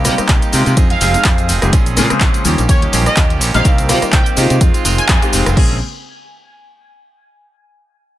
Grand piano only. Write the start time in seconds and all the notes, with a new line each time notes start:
0.05 G3 A#3 C4 F4
0.18 G3 A#3 C4 D#4
0.52 G#3 C4 D#4 F4
1.14 G#3 C4 D#4 G#4
1.62 G#3 C4 D#4 G4
1.97 C#3 G#3 A#3 C4
2.10 C#3 G#3 A#3 C5
2.44 F3 G3 C#4 D#4
2.82 F3 G3 C#4 D#4
2.93 F3 G3 C#4 D#4
3.54 G3 A#3 C4 D#4
3.89 G3 A#3 C4 F4
4.02 G3 A#3 C4 D#4
4.36 G#3 C4 D#4 F4
5.22 G#3 C4 D#4 G4
5.56 C#3 G#3 A#3 C4